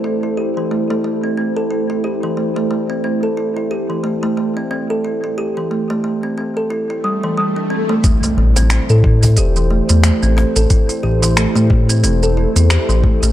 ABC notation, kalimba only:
X:1
M:4/4
L:1/16
Q:"Swing 16ths" 1/4=90
K:Am
V:1 name="Kalimba"
E E G E, A, A, A, C C A E E G E, A, A, | A, C C A E E G E, A, A, A, C C A E E | G E, A, A, A, C C A E E G, E, G, D C A, | A, A, A, C C A E E G E, A, A, A, C C A |
E E G E, A, A, A, C C A E E G E, A, A, |]